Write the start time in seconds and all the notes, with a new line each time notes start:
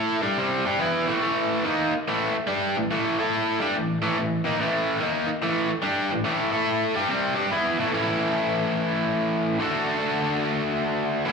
Already playing: A3 E4 A4
0.22 G3 D4 G4
0.37 C3 G3 C4
0.65 G3 D4 G4
0.79 E3 B3 E4
1.07 A2 E3 A3
1.21 A2 E3 A3
1.64 D#3 A#3 D#4
1.93 muted overdriven electric guitar stroke
2.08 A2 E3 A3
2.34 muted overdriven electric guitar stroke
2.47 G3 D4 G4
2.77 A2 E3
2.91 A2 E3 A3
3.19 A3 E4 A4
3.61 G3 D4 G4
3.75 A2 E3
4.02 A2 E3 A3
4.18 A2 E3
4.44 D#3 A#3 D#4
4.59 A2 E3 A3
5.00 D#3 A#3 D#4
5.28 muted overdriven electric guitar stroke
5.42 A2 E3 A3
5.70 muted overdriven electric guitar stroke
5.82 G3 D4 G4
6.12 A2 E3
6.24 A2 E3 A3
6.52 A3 E4 A4
6.95 G3 D4 G4
7.08 C3 G3 C4
7.35 G3 D4 G4
7.51 E3 B3 E4
7.78 A2 E3 A3
7.91 A2 E3 A3 C#4
7.96 E4 A4
9.59 D3 A3 D4 F#4 A4
11.26 A2 E3 A3 C#4 E4